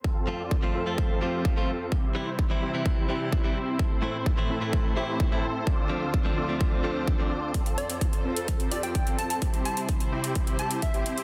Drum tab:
HH |----------------|----------------|----------------|----------------|
BD |o---o---o---o---|o---o---o---o---|o---o---o---o---|o---o---o---o---|

HH |xxxxxx-xxxxxxxxx|xxxxxx-xxxxxxxxx|
BD |o---o---o---o---|o---o---o---o---|